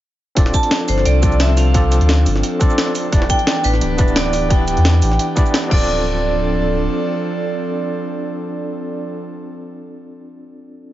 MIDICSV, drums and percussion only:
0, 0, Header, 1, 2, 480
1, 0, Start_track
1, 0, Tempo, 344828
1, 512, Time_signature, 4, 2, 24, 8
1, 15217, End_track
2, 0, Start_track
2, 0, Title_t, "Drums"
2, 510, Note_on_c, 9, 42, 97
2, 512, Note_on_c, 9, 36, 117
2, 639, Note_on_c, 9, 40, 57
2, 649, Note_off_c, 9, 42, 0
2, 651, Note_off_c, 9, 36, 0
2, 750, Note_on_c, 9, 42, 66
2, 750, Note_on_c, 9, 69, 59
2, 752, Note_on_c, 9, 36, 60
2, 778, Note_off_c, 9, 40, 0
2, 879, Note_off_c, 9, 42, 0
2, 879, Note_on_c, 9, 42, 38
2, 889, Note_off_c, 9, 69, 0
2, 891, Note_off_c, 9, 36, 0
2, 989, Note_off_c, 9, 42, 0
2, 989, Note_on_c, 9, 38, 121
2, 989, Note_on_c, 9, 42, 99
2, 1128, Note_off_c, 9, 38, 0
2, 1128, Note_off_c, 9, 42, 0
2, 1228, Note_on_c, 9, 46, 72
2, 1228, Note_on_c, 9, 69, 57
2, 1360, Note_on_c, 9, 40, 35
2, 1367, Note_off_c, 9, 46, 0
2, 1367, Note_off_c, 9, 69, 0
2, 1469, Note_on_c, 9, 42, 97
2, 1499, Note_off_c, 9, 40, 0
2, 1608, Note_off_c, 9, 42, 0
2, 1708, Note_on_c, 9, 42, 71
2, 1708, Note_on_c, 9, 69, 61
2, 1712, Note_on_c, 9, 36, 108
2, 1838, Note_off_c, 9, 69, 0
2, 1838, Note_on_c, 9, 69, 27
2, 1847, Note_off_c, 9, 42, 0
2, 1851, Note_off_c, 9, 36, 0
2, 1947, Note_on_c, 9, 38, 119
2, 1947, Note_on_c, 9, 42, 95
2, 1978, Note_off_c, 9, 69, 0
2, 2086, Note_off_c, 9, 38, 0
2, 2086, Note_off_c, 9, 42, 0
2, 2189, Note_on_c, 9, 40, 35
2, 2189, Note_on_c, 9, 46, 76
2, 2189, Note_on_c, 9, 69, 58
2, 2328, Note_off_c, 9, 40, 0
2, 2328, Note_off_c, 9, 46, 0
2, 2328, Note_off_c, 9, 69, 0
2, 2428, Note_on_c, 9, 42, 92
2, 2432, Note_on_c, 9, 36, 121
2, 2567, Note_off_c, 9, 42, 0
2, 2571, Note_off_c, 9, 36, 0
2, 2670, Note_on_c, 9, 42, 64
2, 2670, Note_on_c, 9, 69, 55
2, 2798, Note_off_c, 9, 42, 0
2, 2798, Note_on_c, 9, 42, 38
2, 2809, Note_off_c, 9, 69, 0
2, 2908, Note_off_c, 9, 42, 0
2, 2908, Note_on_c, 9, 38, 125
2, 2908, Note_on_c, 9, 42, 100
2, 3047, Note_off_c, 9, 38, 0
2, 3047, Note_off_c, 9, 42, 0
2, 3149, Note_on_c, 9, 46, 75
2, 3149, Note_on_c, 9, 69, 56
2, 3279, Note_on_c, 9, 40, 38
2, 3288, Note_off_c, 9, 46, 0
2, 3288, Note_off_c, 9, 69, 0
2, 3389, Note_on_c, 9, 42, 96
2, 3418, Note_off_c, 9, 40, 0
2, 3528, Note_off_c, 9, 42, 0
2, 3630, Note_on_c, 9, 42, 66
2, 3630, Note_on_c, 9, 69, 59
2, 3632, Note_on_c, 9, 36, 112
2, 3760, Note_off_c, 9, 69, 0
2, 3760, Note_on_c, 9, 69, 26
2, 3769, Note_off_c, 9, 42, 0
2, 3771, Note_off_c, 9, 36, 0
2, 3870, Note_on_c, 9, 38, 124
2, 3870, Note_on_c, 9, 42, 91
2, 3899, Note_off_c, 9, 69, 0
2, 4010, Note_off_c, 9, 38, 0
2, 4010, Note_off_c, 9, 42, 0
2, 4110, Note_on_c, 9, 46, 81
2, 4110, Note_on_c, 9, 69, 56
2, 4249, Note_off_c, 9, 46, 0
2, 4249, Note_off_c, 9, 69, 0
2, 4350, Note_on_c, 9, 42, 88
2, 4351, Note_on_c, 9, 36, 124
2, 4480, Note_on_c, 9, 40, 58
2, 4489, Note_off_c, 9, 42, 0
2, 4491, Note_off_c, 9, 36, 0
2, 4590, Note_on_c, 9, 42, 65
2, 4590, Note_on_c, 9, 69, 57
2, 4591, Note_on_c, 9, 36, 64
2, 4619, Note_off_c, 9, 40, 0
2, 4719, Note_off_c, 9, 42, 0
2, 4719, Note_on_c, 9, 42, 36
2, 4730, Note_off_c, 9, 69, 0
2, 4731, Note_off_c, 9, 36, 0
2, 4830, Note_off_c, 9, 42, 0
2, 4830, Note_on_c, 9, 38, 127
2, 4830, Note_on_c, 9, 42, 91
2, 4969, Note_off_c, 9, 38, 0
2, 4969, Note_off_c, 9, 42, 0
2, 5069, Note_on_c, 9, 46, 81
2, 5069, Note_on_c, 9, 69, 55
2, 5200, Note_on_c, 9, 40, 37
2, 5208, Note_off_c, 9, 46, 0
2, 5208, Note_off_c, 9, 69, 0
2, 5309, Note_on_c, 9, 42, 92
2, 5339, Note_off_c, 9, 40, 0
2, 5448, Note_off_c, 9, 42, 0
2, 5548, Note_on_c, 9, 42, 63
2, 5548, Note_on_c, 9, 69, 57
2, 5552, Note_on_c, 9, 36, 118
2, 5679, Note_off_c, 9, 69, 0
2, 5679, Note_on_c, 9, 69, 25
2, 5687, Note_off_c, 9, 42, 0
2, 5691, Note_off_c, 9, 36, 0
2, 5790, Note_on_c, 9, 38, 124
2, 5790, Note_on_c, 9, 42, 91
2, 5818, Note_off_c, 9, 69, 0
2, 5929, Note_off_c, 9, 38, 0
2, 5929, Note_off_c, 9, 42, 0
2, 6031, Note_on_c, 9, 40, 35
2, 6031, Note_on_c, 9, 46, 81
2, 6031, Note_on_c, 9, 69, 57
2, 6171, Note_off_c, 9, 40, 0
2, 6171, Note_off_c, 9, 46, 0
2, 6171, Note_off_c, 9, 69, 0
2, 6271, Note_on_c, 9, 42, 92
2, 6272, Note_on_c, 9, 36, 126
2, 6410, Note_off_c, 9, 42, 0
2, 6411, Note_off_c, 9, 36, 0
2, 6510, Note_on_c, 9, 42, 61
2, 6510, Note_on_c, 9, 69, 55
2, 6639, Note_off_c, 9, 42, 0
2, 6639, Note_on_c, 9, 42, 34
2, 6649, Note_off_c, 9, 69, 0
2, 6750, Note_off_c, 9, 42, 0
2, 6750, Note_on_c, 9, 38, 125
2, 6750, Note_on_c, 9, 42, 90
2, 6889, Note_off_c, 9, 38, 0
2, 6889, Note_off_c, 9, 42, 0
2, 6990, Note_on_c, 9, 46, 82
2, 6990, Note_on_c, 9, 69, 57
2, 7120, Note_on_c, 9, 40, 36
2, 7130, Note_off_c, 9, 46, 0
2, 7130, Note_off_c, 9, 69, 0
2, 7229, Note_on_c, 9, 42, 90
2, 7259, Note_off_c, 9, 40, 0
2, 7369, Note_off_c, 9, 42, 0
2, 7471, Note_on_c, 9, 42, 64
2, 7471, Note_on_c, 9, 69, 59
2, 7472, Note_on_c, 9, 36, 111
2, 7601, Note_off_c, 9, 69, 0
2, 7601, Note_on_c, 9, 69, 26
2, 7610, Note_off_c, 9, 42, 0
2, 7611, Note_off_c, 9, 36, 0
2, 7711, Note_on_c, 9, 38, 122
2, 7711, Note_on_c, 9, 42, 88
2, 7740, Note_off_c, 9, 69, 0
2, 7850, Note_off_c, 9, 38, 0
2, 7850, Note_off_c, 9, 42, 0
2, 7951, Note_on_c, 9, 49, 90
2, 7952, Note_on_c, 9, 36, 117
2, 8090, Note_off_c, 9, 49, 0
2, 8091, Note_off_c, 9, 36, 0
2, 15217, End_track
0, 0, End_of_file